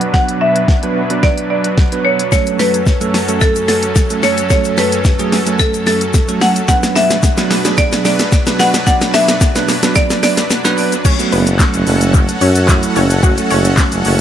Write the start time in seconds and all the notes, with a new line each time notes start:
Already playing: B2 F#3 D4 B4 F#5
0.01 closed hi-hat
0.14 F#3 B3 D4 B4 F#5, kick, snare
0.28 closed hi-hat
0.41 E5
0.56 closed hi-hat
0.68 kick, snare
0.83 F#3 B3 D4 B4, closed hi-hat
1.10 F#3 B3 D4 B4, closed hi-hat
1.23 D5, kick, snare
1.38 closed hi-hat
1.50 D5
1.64 closed hi-hat
1.77 kick, snare
1.92 F#3 B3 D4 B4, closed hi-hat
2.05 C#5
2.19 closed hi-hat
2.32 F#2 F#3 A3 C#4 A4 C#5, kick, snare, shaker
2.47 closed hi-hat, shaker
2.59 B4, snare, open hi-hat, shaker
2.74 closed hi-hat, shaker
2.87 kick, snare, shaker
3.01 F#3 A3 C#4 A4, closed hi-hat, shaker
3.14 snare, open hi-hat
3.28 F#3 A3 C#4 A4, closed hi-hat, shaker
3.41 A4, kick, snare, shaker
3.56 closed hi-hat, shaker
3.68 A4, snare, open hi-hat, shaker
3.83 closed hi-hat, shaker
3.96 kick, snare, shaker
4.10 F#3 A3 C#4 A4, closed hi-hat, shaker
4.23 C#5, snare, open hi-hat, shaker
4.37 closed hi-hat, shaker
4.50 F#3 A3 C#4 A4 C#5, kick, snare, shaker
4.64 closed hi-hat, shaker
4.77 B4, snare, open hi-hat, shaker
4.92 closed hi-hat, shaker
5.05 kick, snare, shaker
5.19 F#3 A3 C#4 G#4, closed hi-hat, shaker
5.32 snare, open hi-hat
5.46 F#3 A3 C#4 A4, closed hi-hat, shaker
5.59 A4, kick, snare, shaker
5.74 closed hi-hat, shaker
5.87 A4, snare, open hi-hat, shaker
6.01 closed hi-hat, shaker
6.14 kick, snare, shaker
6.28 F#3 A3 C#4 A4, closed hi-hat, shaker
6.41 F#5, snare, open hi-hat, shaker
6.56 closed hi-hat, shaker
6.68 B2 F#3 B3 D4 B4 F#5, kick, snare, shaker
6.83 snare, closed hi-hat, shaker
6.96 E5, snare, open hi-hat, shaker
7.10 snare, closed hi-hat, shaker
7.23 kick, snare, shaker
7.37 F#3 B3 D4 B4, snare, closed hi-hat, shaker
7.51 snare, open hi-hat, shaker
7.65 F#3 B3 D4 G#4, snare, closed hi-hat, shaker
7.77 D5, kick, snare, shaker
7.92 snare, closed hi-hat, shaker
8.05 D5, snare, open hi-hat, shaker
8.19 snare, closed hi-hat, shaker
8.32 kick, snare, shaker
8.46 F#3 B3 D4 B4, snare, closed hi-hat, shaker
8.59 F#5, snare, open hi-hat, shaker
8.74 snare, closed hi-hat, shaker
8.86 F#3 B3 D4 D5 F#5, kick, snare, shaker
9.01 snare, closed hi-hat, shaker
9.14 E5, snare, open hi-hat, shaker
9.28 snare, closed hi-hat, shaker
9.41 kick, snare, shaker
9.55 F#3 B3 D4 B4, snare, closed hi-hat, shaker
9.68 snare, open hi-hat, shaker
9.83 F#3 B3 D4 B4, snare, closed hi-hat, shaker
9.95 D5, kick, snare, shaker
10.10 snare, closed hi-hat, shaker
10.23 D5, snare, open hi-hat, shaker
10.37 snare, closed hi-hat, shaker
10.50 snare, shaker
10.64 F#3 B3 D4 B4, snare, closed hi-hat, shaker
10.78 open hi-hat, shaker
10.92 closed hi-hat, shaker
11.04 F#3 A3 C#4 F#4 A4 C#5 F#5, kick, crash, shaker
11.19 F#3 A3 B3, closed hi-hat, shaker
11.32 F#1 B3 B4, open hi-hat, shaker
11.47 closed hi-hat, shaker
11.59 F#3 A3 C#4, kick, snare, clap, shaker
11.74 F#1, closed hi-hat, shaker
11.87 F#1, open hi-hat, shaker
12.01 closed hi-hat, shaker
12.14 kick, shaker
12.28 closed hi-hat, shaker
12.41 F#2 C#4 C#5, open hi-hat, shaker
12.55 closed hi-hat, shaker
12.68 F#3 A3 E4, kick, snare, clap, shaker
12.83 closed hi-hat, shaker
12.96 F#1 C#4 C#5, open hi-hat, shaker
13.10 closed hi-hat, shaker
13.23 F#3 A3 C#4 F#4 F#5, kick, shaker
13.37 F#3 A3 C#4, closed hi-hat, shaker
13.50 F#1 C#4 C#5, open hi-hat, shaker
13.65 closed hi-hat, shaker
13.77 F#3 A3 C#4, kick, snare, clap, shaker
13.92 F#1, closed hi-hat, shaker
14.05 F#1, open hi-hat, shaker